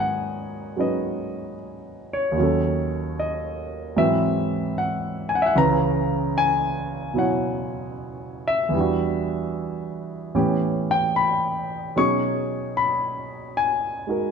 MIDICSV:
0, 0, Header, 1, 2, 480
1, 0, Start_track
1, 0, Key_signature, 5, "minor"
1, 0, Tempo, 798935
1, 1413, Time_signature, 4, 2, 24, 8
1, 8599, End_track
2, 0, Start_track
2, 0, Title_t, "Grand piano"
2, 0, Program_c, 0, 0
2, 0, Control_c, 0, 64, 127
2, 0, Note_on_c, 0, 44, 45
2, 0, Note_on_c, 0, 51, 45
2, 0, Note_on_c, 0, 54, 41
2, 0, Note_on_c, 0, 59, 45
2, 0, Note_on_c, 0, 61, 42
2, 0, Note_on_c, 0, 70, 53
2, 0, Note_on_c, 0, 78, 69
2, 0, Note_on_c, 0, 80, 80
2, 442, Note_off_c, 0, 78, 0
2, 451, Note_off_c, 0, 54, 0
2, 458, Note_off_c, 0, 61, 0
2, 459, Note_on_c, 0, 56, 33
2, 460, Note_on_c, 0, 54, 33
2, 467, Note_on_c, 0, 61, 35
2, 472, Note_on_c, 0, 63, 30
2, 478, Note_on_c, 0, 71, 40
2, 484, Note_on_c, 0, 75, 53
2, 924, Note_off_c, 0, 75, 0
2, 1282, Note_on_c, 0, 73, 61
2, 1391, Note_on_c, 0, 39, 48
2, 1402, Note_off_c, 0, 51, 0
2, 1411, Note_on_c, 0, 51, 40
2, 1416, Note_off_c, 0, 54, 0
2, 1416, Note_off_c, 0, 56, 0
2, 1418, Note_off_c, 0, 44, 0
2, 1420, Note_off_c, 0, 59, 0
2, 1420, Note_off_c, 0, 61, 0
2, 1421, Note_off_c, 0, 70, 0
2, 1421, Control_c, 0, 64, 0
2, 1423, Note_off_c, 0, 63, 0
2, 1424, Note_off_c, 0, 80, 0
2, 1425, Note_off_c, 0, 71, 0
2, 1427, Note_on_c, 0, 54, 39
2, 1443, Note_on_c, 0, 61, 42
2, 1460, Note_on_c, 0, 69, 46
2, 1545, Control_c, 0, 64, 127
2, 1919, Note_on_c, 0, 75, 61
2, 1926, Note_off_c, 0, 73, 0
2, 2360, Note_off_c, 0, 39, 0
2, 2370, Note_off_c, 0, 51, 0
2, 2376, Note_off_c, 0, 54, 0
2, 2378, Control_c, 0, 64, 0
2, 2382, Note_on_c, 0, 44, 47
2, 2382, Note_on_c, 0, 52, 41
2, 2385, Note_on_c, 0, 54, 40
2, 2386, Note_off_c, 0, 61, 0
2, 2391, Note_on_c, 0, 71, 47
2, 2391, Note_on_c, 0, 76, 69
2, 2392, Note_on_c, 0, 60, 40
2, 2395, Note_off_c, 0, 69, 0
2, 2399, Note_off_c, 0, 75, 0
2, 2467, Control_c, 0, 64, 127
2, 2835, Note_off_c, 0, 76, 0
2, 2872, Note_on_c, 0, 78, 67
2, 3179, Note_on_c, 0, 80, 65
2, 3203, Note_off_c, 0, 78, 0
2, 3216, Note_on_c, 0, 78, 63
2, 3217, Note_off_c, 0, 80, 0
2, 3254, Note_off_c, 0, 78, 0
2, 3257, Note_on_c, 0, 76, 62
2, 3283, Note_on_c, 0, 78, 68
2, 3292, Note_off_c, 0, 76, 0
2, 3323, Note_off_c, 0, 78, 0
2, 3329, Note_off_c, 0, 52, 0
2, 3333, Note_off_c, 0, 44, 0
2, 3335, Note_off_c, 0, 54, 0
2, 3335, Note_off_c, 0, 71, 0
2, 3336, Note_on_c, 0, 37, 53
2, 3337, Control_c, 0, 64, 0
2, 3337, Note_on_c, 0, 49, 47
2, 3338, Note_off_c, 0, 60, 0
2, 3338, Note_on_c, 0, 52, 41
2, 3341, Note_on_c, 0, 61, 45
2, 3344, Note_on_c, 0, 71, 54
2, 3351, Note_on_c, 0, 82, 84
2, 3446, Control_c, 0, 64, 127
2, 3794, Note_off_c, 0, 82, 0
2, 3831, Note_on_c, 0, 80, 85
2, 4287, Note_on_c, 0, 47, 37
2, 4294, Note_on_c, 0, 54, 31
2, 4303, Note_on_c, 0, 64, 33
2, 4310, Note_on_c, 0, 73, 40
2, 4313, Note_off_c, 0, 80, 0
2, 4317, Note_on_c, 0, 78, 61
2, 4758, Note_off_c, 0, 78, 0
2, 5092, Note_on_c, 0, 76, 78
2, 5219, Note_on_c, 0, 40, 46
2, 5229, Note_off_c, 0, 52, 0
2, 5238, Note_on_c, 0, 52, 42
2, 5247, Note_off_c, 0, 47, 0
2, 5251, Note_off_c, 0, 37, 0
2, 5251, Note_off_c, 0, 54, 0
2, 5252, Note_off_c, 0, 49, 0
2, 5254, Note_off_c, 0, 61, 0
2, 5254, Control_c, 0, 64, 0
2, 5254, Note_on_c, 0, 55, 46
2, 5255, Note_off_c, 0, 64, 0
2, 5255, Note_off_c, 0, 71, 0
2, 5259, Note_off_c, 0, 73, 0
2, 5273, Note_on_c, 0, 62, 43
2, 5289, Note_on_c, 0, 66, 48
2, 5350, Control_c, 0, 64, 127
2, 6196, Note_off_c, 0, 40, 0
2, 6206, Note_off_c, 0, 52, 0
2, 6214, Note_off_c, 0, 55, 0
2, 6216, Note_on_c, 0, 45, 41
2, 6217, Note_on_c, 0, 52, 42
2, 6218, Note_on_c, 0, 59, 40
2, 6218, Note_on_c, 0, 61, 43
2, 6219, Control_c, 0, 64, 0
2, 6223, Note_off_c, 0, 62, 0
2, 6223, Note_on_c, 0, 67, 50
2, 6231, Note_off_c, 0, 66, 0
2, 6326, Control_c, 0, 64, 127
2, 6511, Note_off_c, 0, 76, 0
2, 6555, Note_on_c, 0, 79, 76
2, 6706, Note_on_c, 0, 83, 72
2, 6709, Note_off_c, 0, 79, 0
2, 7179, Note_off_c, 0, 61, 0
2, 7180, Note_off_c, 0, 45, 0
2, 7180, Note_off_c, 0, 52, 0
2, 7180, Note_off_c, 0, 59, 0
2, 7183, Note_off_c, 0, 67, 0
2, 7184, Control_c, 0, 64, 0
2, 7185, Note_on_c, 0, 54, 42
2, 7187, Note_on_c, 0, 47, 44
2, 7188, Note_on_c, 0, 61, 44
2, 7192, Note_on_c, 0, 63, 40
2, 7195, Note_on_c, 0, 85, 75
2, 7196, Note_on_c, 0, 68, 52
2, 7197, Note_off_c, 0, 83, 0
2, 7299, Control_c, 0, 64, 127
2, 7643, Note_off_c, 0, 85, 0
2, 7672, Note_on_c, 0, 83, 71
2, 8154, Note_on_c, 0, 80, 70
2, 8160, Note_off_c, 0, 83, 0
2, 8452, Note_off_c, 0, 63, 0
2, 8453, Note_on_c, 0, 56, 31
2, 8461, Note_on_c, 0, 63, 31
2, 8465, Note_on_c, 0, 66, 32
2, 8473, Note_on_c, 0, 70, 36
2, 8599, Note_off_c, 0, 47, 0
2, 8599, Note_off_c, 0, 54, 0
2, 8599, Note_off_c, 0, 56, 0
2, 8599, Note_off_c, 0, 61, 0
2, 8599, Note_off_c, 0, 63, 0
2, 8599, Note_off_c, 0, 66, 0
2, 8599, Note_off_c, 0, 68, 0
2, 8599, Note_off_c, 0, 70, 0
2, 8599, Note_off_c, 0, 80, 0
2, 8599, End_track
0, 0, End_of_file